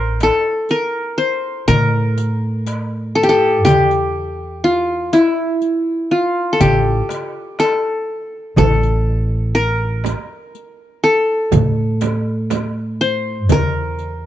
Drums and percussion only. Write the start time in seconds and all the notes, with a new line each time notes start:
0.20 riq, darbuka tek
0.69 riq
1.68 riq, darbuka dum
2.18 riq
2.67 riq, darbuka tek
3.66 riq, darbuka dum
3.91 riq
4.16 darbuka ka
4.64 riq
5.13 riq, darbuka tek
5.62 riq
6.60 riq, darbuka dum
7.09 riq, darbuka tek
7.59 riq, darbuka tek
8.56 riq, darbuka dum, frame drum
8.83 riq
9.07 darbuka ka
9.56 riq
10.04 riq, darbuka tek, frame drum
10.55 riq
11.52 riq, darbuka dum, frame drum
12.01 riq, darbuka tek, frame drum
12.50 riq, darbuka tek, frame drum
13.49 riq, darbuka dum, frame drum
13.99 riq, darbuka ka